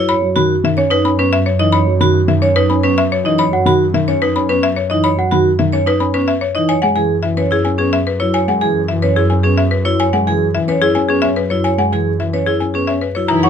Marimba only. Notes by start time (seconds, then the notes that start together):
Already playing: C#5
0.09 B5
0.36 B5
0.65 E5
0.78 C#5
0.91 B4
1.05 B5
1.19 B4
1.33 E5
1.46 C#5
1.59 D#5
1.72 B5
2.01 B5
2.28 E5
2.42 C#5
2.56 B4
2.70 B5
2.84 B4
2.98 E5
3.12 C#5
3.26 D#5
3.39 B5
3.66 B5
3.94 E5
4.08 C#5
4.22 B4
4.36 B5
4.49 B4
4.63 E5
4.76 C#5
4.90 D#5
5.04 B5
5.32 B5
5.59 E5
5.73 C#5
5.87 B4
6.00 B5
6.14 B4
6.28 E5
6.41 C#5
6.55 D#5
6.69 G#5
6.82 F#5
6.96 G#5
7.23 E5
7.37 B4
7.52 G#4
7.65 G#5
7.79 G#4
7.93 E5
8.07 B4
8.20 C#5
8.34 G#5
8.48 F#5
8.61 G#5
8.88 E5
9.02 B4
9.16 G#4
9.30 G#5
9.44 G#4
9.58 E5
9.71 B4
9.85 C#5
10.00 G#5
10.13 F#5
10.28 G#5
10.55 E5
10.69 B4
10.82 G#4
10.95 G#5
11.09 G#4
11.22 E5
11.36 B4
11.50 C#5
11.64 G#5
11.79 F#5
11.93 G#5
12.20 E5
12.33 B4
12.46 G#4
12.60 G#5
12.74 G#4
12.87 E5
13.01 B4
13.15 C#5
13.28 A#5
13.43 F#5